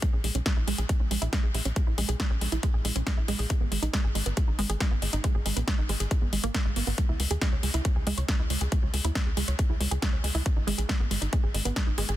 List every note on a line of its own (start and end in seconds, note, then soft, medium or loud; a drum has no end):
0.02 0.10 G#3 loud
0.02 kick loud
0.02 closed hi-hat medium
0.13 0.20 A#1 medium
0.13 0.21 G#4 medium
0.24 0.31 A#1 loud
0.24 0.31 G#3 medium
0.24 open hi-hat loud
0.35 0.42 B1 loud
0.35 0.42 C#4 medium
0.35 closed hi-hat medium
0.46 0.53 G#3 medium
0.46 kick loud
0.46 snare loud
0.46 closed hi-hat medium
0.57 0.63 A#1 medium
0.57 0.64 E4 medium
0.67 0.74 A#1 loud
0.67 0.75 G#3 loud
0.67 open hi-hat loud
0.78 0.85 A#1 medium
0.78 0.86 G#4 medium
0.78 closed hi-hat medium
0.89 0.97 G#3 medium
0.89 kick loud
0.89 closed hi-hat medium
1.00 1.07 A#1 medium
1.00 1.07 C#4 medium
1.11 1.18 A#1 loud
1.11 1.18 G#3 medium
1.11 open hi-hat loud
1.22 1.29 A#1 loud
1.22 1.29 E4 medium
1.22 closed hi-hat medium
1.33 1.40 G#3 loud
1.33 kick loud
1.33 snare loud
1.33 closed hi-hat medium
1.44 1.50 A#1 medium
1.44 1.51 G#4 medium
1.54 1.61 A#1 loud
1.54 1.62 G#3 medium
1.54 open hi-hat loud
1.65 1.72 A#1 medium
1.65 1.73 C#4 medium
1.65 closed hi-hat medium
1.76 1.84 G#3 medium
1.76 kick loud
1.76 closed hi-hat medium
1.87 1.94 A#1 medium
1.87 1.94 E4 medium
1.98 2.05 A#1 loud
1.98 2.05 G#3 loud
1.98 open hi-hat loud
2.09 2.16 B1 medium
2.09 2.16 G#4 medium
2.09 closed hi-hat medium
2.20 2.27 G#3 medium
2.20 kick loud
2.20 snare loud
2.20 closed hi-hat medium
2.30 2.37 A#1 medium
2.30 2.38 C#4 medium
2.41 2.48 A#1 loud
2.41 2.49 G#3 medium
2.41 open hi-hat loud
2.52 2.59 A#1 medium
2.52 2.60 E4 medium
2.52 closed hi-hat medium
2.63 2.71 G#3 loud
2.63 kick loud
2.63 closed hi-hat medium
2.74 2.81 A#1 medium
2.74 2.81 G#4 medium
2.85 2.92 A#1 loud
2.85 2.92 G#3 medium
2.85 open hi-hat loud
2.96 3.03 A#1 loud
2.96 3.03 C#4 medium
2.96 closed hi-hat medium
3.06 3.14 G#3 medium
3.06 kick loud
3.06 snare loud
3.06 closed hi-hat medium
3.17 3.24 A#1 medium
3.17 3.25 E4 medium
3.28 3.35 A#1 loud
3.28 3.36 G#3 loud
3.28 open hi-hat loud
3.39 3.46 A#1 loud
3.39 3.47 G#4 medium
3.39 open hi-hat medium
3.50 3.57 G#3 medium
3.50 kick loud
3.50 closed hi-hat medium
3.61 3.68 G#1 medium
3.61 3.68 B3 medium
3.72 3.79 G#1 loud
3.72 3.79 G#3 medium
3.72 open hi-hat loud
3.82 3.89 A#1 loud
3.82 3.90 D#4 medium
3.82 closed hi-hat medium
3.93 4.01 G#3 loud
3.93 kick loud
3.93 snare loud
3.93 closed hi-hat medium
4.04 4.11 G#1 medium
4.04 4.12 G#4 medium
4.15 4.22 G#1 loud
4.15 4.23 G#3 medium
4.15 open hi-hat loud
4.26 4.33 G#1 medium
4.26 4.34 B3 medium
4.26 closed hi-hat medium
4.37 4.44 G#3 medium
4.37 kick loud
4.37 closed hi-hat medium
4.48 4.55 G#1 medium
4.48 4.55 D#4 medium
4.59 4.66 G#1 loud
4.59 4.66 G#3 loud
4.59 open hi-hat loud
4.70 4.76 G#1 loud
4.70 4.77 G#4 medium
4.70 closed hi-hat medium
4.80 4.88 G#3 medium
4.80 kick loud
4.80 snare loud
4.80 closed hi-hat medium
4.91 4.98 G#1 medium
4.91 4.99 B3 medium
5.02 5.09 G#1 loud
5.02 5.10 G#3 medium
5.02 open hi-hat loud
5.13 5.20 G#1 medium
5.13 5.21 D#4 medium
5.13 closed hi-hat medium
5.24 5.31 G#3 loud
5.24 kick loud
5.24 closed hi-hat medium
5.35 5.42 G#1 medium
5.35 5.42 G#4 medium
5.46 5.53 G#1 loud
5.46 5.53 G#3 medium
5.46 open hi-hat loud
5.56 5.63 A#1 medium
5.56 5.64 B3 medium
5.56 closed hi-hat medium
5.67 5.75 G#3 medium
5.67 kick loud
5.67 snare loud
5.67 closed hi-hat medium
5.78 5.85 G#1 medium
5.78 5.86 D#4 medium
5.89 5.96 G#1 loud
5.89 5.97 G#3 medium
5.89 open hi-hat loud
6.00 6.07 G#1 medium
6.00 6.08 G#4 medium
6.00 closed hi-hat medium
6.11 6.18 G#3 medium
6.11 kick loud
6.11 closed hi-hat medium
6.22 6.29 G#1 medium
6.22 6.29 B3 medium
6.33 6.40 G#1 loud
6.33 6.40 G#3 medium
6.33 open hi-hat loud
6.44 6.50 G#1 loud
6.44 6.53 A#3 loud
6.44 closed hi-hat medium
6.54 6.59 A#3 loud
6.54 kick loud
6.54 snare loud
6.54 closed hi-hat medium
6.65 6.72 G#1 medium
6.65 6.76 G#3 loud
6.76 6.83 G#1 medium
6.76 6.84 B3 medium
6.76 open hi-hat loud
6.87 6.94 G#1 medium
6.87 6.97 B3 medium
6.87 open hi-hat medium
6.98 7.05 G#3 medium
6.98 kick loud
6.98 closed hi-hat medium
7.09 7.16 C#2 medium
7.09 7.16 E4 medium
7.20 7.27 C#2 loud
7.20 7.27 G#3 medium
7.20 open hi-hat loud
7.31 7.37 D#2 medium
7.31 7.38 G#4 medium
7.31 closed hi-hat medium
7.41 7.49 G#3 loud
7.41 kick loud
7.41 snare loud
7.41 closed hi-hat medium
7.52 7.59 C#2 medium
7.52 7.60 C#5 medium
7.63 7.70 C#2 loud
7.63 7.71 G#3 medium
7.63 open hi-hat loud
7.74 7.81 C#2 medium
7.74 7.81 E4 medium
7.74 closed hi-hat medium
7.85 7.92 G#3 medium
7.85 kick loud
7.85 closed hi-hat medium
7.96 8.03 C#2 medium
7.96 8.03 G#4 medium
8.07 8.14 C#2 loud
8.07 8.14 G#3 loud
8.07 open hi-hat loud
8.18 8.24 C#2 loud
8.18 8.25 C#5 medium
8.18 closed hi-hat medium
8.28 8.36 G#3 medium
8.28 kick loud
8.28 snare loud
8.28 closed hi-hat medium
8.39 8.46 C#2 medium
8.39 8.47 E4 medium
8.50 8.57 C#2 loud
8.50 8.58 G#3 medium
8.50 open hi-hat loud
8.61 8.68 C#2 medium
8.61 8.68 G#4 medium
8.61 closed hi-hat medium
8.72 8.79 G#3 loud
8.72 kick loud
8.72 closed hi-hat medium
8.83 8.90 C#2 medium
8.83 8.90 C#5 medium
8.94 9.01 C#2 loud
8.94 9.01 G#3 medium
8.94 open hi-hat loud
9.05 9.11 D#2 medium
9.05 9.12 E4 medium
9.05 closed hi-hat medium
9.15 9.23 G#3 medium
9.15 kick loud
9.15 snare loud
9.15 closed hi-hat medium
9.26 9.33 C#2 medium
9.26 9.34 G#4 medium
9.37 9.44 C#2 medium
9.37 9.44 G#3 loud
9.37 open hi-hat loud
9.48 9.55 C#2 medium
9.48 9.55 C#5 medium
9.48 closed hi-hat medium
9.59 9.66 G#3 medium
9.59 kick loud
9.59 closed hi-hat medium
9.70 9.77 C#2 medium
9.70 9.77 E4 medium
9.80 9.87 C#2 loud
9.80 9.88 G#3 medium
9.80 open hi-hat loud
9.91 9.98 C#2 loud
9.91 9.99 G#4 medium
9.91 closed hi-hat medium
10.02 10.10 G#3 loud
10.02 kick loud
10.02 snare loud
10.02 closed hi-hat medium
10.13 10.20 C#2 medium
10.13 10.20 C#5 medium
10.24 10.31 C#2 loud
10.24 10.31 G#3 medium
10.24 open hi-hat loud
10.35 10.42 C#2 medium
10.35 10.42 E4 medium
10.35 open hi-hat medium
10.46 10.53 G#3 medium
10.46 kick loud
10.46 closed hi-hat medium
10.56 10.64 G#1 medium
10.56 10.64 D#4 medium
10.67 10.74 G#1 loud
10.67 10.75 G#3 loud
10.67 open hi-hat loud
10.78 10.85 A#1 medium
10.78 10.86 G#4 medium
10.78 closed hi-hat medium
10.89 10.96 G#3 medium
10.89 kick loud
10.89 snare loud
10.89 closed hi-hat medium
11.00 11.07 G#1 medium
11.00 11.07 B3 medium
11.11 11.18 G#1 loud
11.11 11.18 G#3 medium
11.11 open hi-hat loud
11.22 11.29 G#1 medium
11.22 11.29 D#4 medium
11.22 closed hi-hat medium
11.33 11.40 G#3 loud
11.33 kick loud
11.33 closed hi-hat medium
11.43 11.50 G#1 medium
11.43 11.51 G#4 medium
11.54 11.61 G#1 loud
11.54 11.62 G#3 medium
11.54 open hi-hat loud
11.65 11.72 G#1 loud
11.65 11.73 B3 medium
11.65 closed hi-hat medium
11.76 11.84 G#3 medium
11.76 kick loud
11.76 snare loud
11.76 closed hi-hat medium
11.87 11.94 G#1 medium
11.87 11.94 D#4 medium
11.98 12.05 G#1 loud
11.98 12.05 G#3 loud
11.98 open hi-hat loud
12.09 12.16 G#1 medium
12.09 12.16 G#4 medium
12.09 closed hi-hat medium